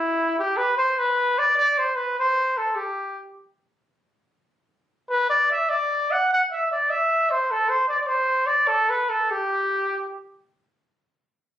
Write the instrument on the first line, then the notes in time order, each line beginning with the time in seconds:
trumpet
Already playing: E4
0.39 G4
0.57 B4
0.78 C5
0.99 B4
1.39 D5
1.57 D5
1.78 C5
1.96 B4
2.19 C5
2.58 A4
2.75 G4
5.10 B4
5.30 D5
5.51 E5
5.69 D5
6.11 F#5
6.33 F#5
6.51 E5
6.71 D5
6.90 E5
7.30 C5
7.51 A4
7.69 C5
7.88 D5
8.01 D5
8.07 C5
8.47 D5
8.68 A4
8.90 B4
9.09 A4
9.31 G4